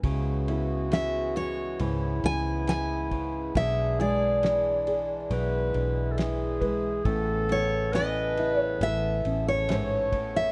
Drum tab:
RD |xxxxxxxx|xxxxxxxx|xxxxxxxx|
SD |--o---o-|--o---o-|--o---o-|
BD |o------o|o------o|o------o|